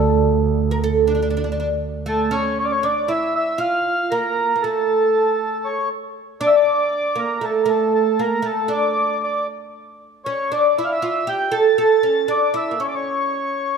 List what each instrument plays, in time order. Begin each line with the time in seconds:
Already playing: double bass D2, oud A4
0.71 oud A#4
0.84 oud A4
1.07 oud D4
1.15 oud D4
1.22 oud D4
1.30 oud D4
1.37 oud D4
1.44 oud D4
1.52 oud D4
1.60 oud D4
2.06 oud A3, accordion A4
2.31 oud C#4, accordion C#5
2.59 accordion C#5
2.64 accordion D5
2.71 accordion C#5
2.83 oud D4, accordion D5
3.08 oud E4, accordion E5
3.35 accordion E5
3.58 oud F4, accordion F5
4.11 oud A#3, accordion A#4
4.56 oud A#3
4.62 oud A3, accordion A4
5.65 accordion C#5
6.41 oud D4, accordion D5
6.47 accordion E5
6.56 accordion D5
7.15 oud A#3, accordion A#4
7.41 oud A3, accordion A4
7.64 oud A3, accordion A#4
7.70 accordion A4
7.95 accordion A4
8.19 oud A#3, accordion A#4
8.42 oud A3, accordion A4
8.68 oud D4, accordion D5
9.23 accordion D5
10.25 oud C#4, accordion C#5
10.52 oud D4, accordion D5
10.78 oud E4, accordion E5
10.85 accordion F5
10.92 accordion E5
11.02 oud F4
11.27 oud G4, accordion G5
11.51 oud A4, accordion A5
11.78 oud A4, accordion A5
12.03 oud C#4
12.28 oud D4, accordion D5
12.54 oud E4, accordion E5
12.71 oud A#3
12.80 oud C#4, accordion C#5
12.88 accordion D5
12.95 accordion C#5